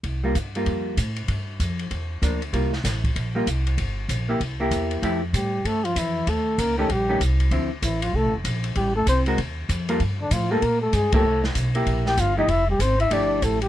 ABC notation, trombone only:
X:1
M:4/4
L:1/8
Q:"Swing" 1/4=193
K:F
V:1 name="Trombone"
z8 | z8 | z8 | z8 |
z2 G,2 A, F, E,2 | A,2 B, A, G,2 z2 | z2 E, F, A, z3 | G, A, C z4 z |
z D, F, A, B, A, _A, =A,- | A, z4 G F _E | E G, C E D2 A, G, |]